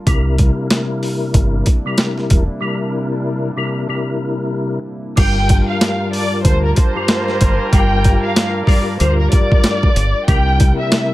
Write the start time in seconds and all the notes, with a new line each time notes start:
0.05 C2 C3 G3 A#3 D4 E4 A#4, kick, closed hi-hat
0.38 kick, closed hi-hat
0.70 snare, closed hi-hat
1.03 open hi-hat
1.34 G1, kick, closed hi-hat
1.66 kick, closed hi-hat
1.85 C3 G3 E4 A#4
1.98 snare, closed hi-hat
2.18 snare
2.30 E1, kick, closed hi-hat
2.60 C3 G3 E4 A#4
3.56 C3 G3 E4 A#4
3.88 C3 G3 E4 A#4
5.16 G1 G2 G3 D4 F4 A#4 G5 A5, kick, closed hi-hat, crash
5.49 kick, closed hi-hat
5.69 F5
5.81 snare, closed hi-hat
6.13 D5, open hi-hat
6.43 D2 G3 A#3 F4 A#4 C5, kick, closed hi-hat
6.65 A#4
6.76 C5, kick, closed hi-hat
6.95 G2 G3 F4 A#4
7.08 snare, closed hi-hat
7.28 snare
7.41 G1, kick, closed hi-hat
7.72 G1 G2 G3 F4 A#4 G5, kick, closed hi-hat
8.04 kick, closed hi-hat
8.24 F5
8.36 snare, closed hi-hat
8.66 G2 G3 F4 A#4 D5, kick, open hi-hat
8.99 D2 G2 G3 F4 A#4 C5, closed hi-hat
9.20 A#4
9.32 D5, kick, closed hi-hat
9.52 kick
9.64 snare, closed hi-hat
9.83 kick
9.96 G1, closed hi-hat
10.27 C2 C3 G3 A#3 D4 E4 A#4 G5, kick, closed hi-hat
10.60 kick, closed hi-hat
10.79 E5
10.92 snare, closed hi-hat